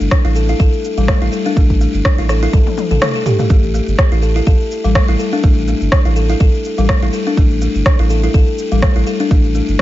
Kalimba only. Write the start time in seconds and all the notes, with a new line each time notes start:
0.25 E4
0.36 A4
0.49 E4
0.60 A4
0.98 G3
1.08 A3
1.22 E4
1.32 A4
1.46 D4
1.57 A3
1.81 A3
2.18 E4
2.29 A4
2.43 E4
2.53 A4
2.91 A4
3.02 A3
3.15 A4
3.26 G4
3.39 A3
3.50 A3
3.74 A3
4.12 E4
4.23 A4
4.36 E4
4.47 A4
4.84 G3
4.95 A3
5.08 E4
5.19 A4
5.33 D4
5.44 A3
5.68 A3
6.05 E4
6.16 A4
6.30 E4
6.40 A4
6.78 G3
6.89 A3
7.03 E4
7.13 A4
7.27 D4
7.37 A3
7.62 A3
7.99 E4
8.10 A4
8.24 E4
8.34 A4
8.72 G3
8.83 A3
8.96 E4
9.07 A4
9.20 D4
9.31 A3
9.55 A3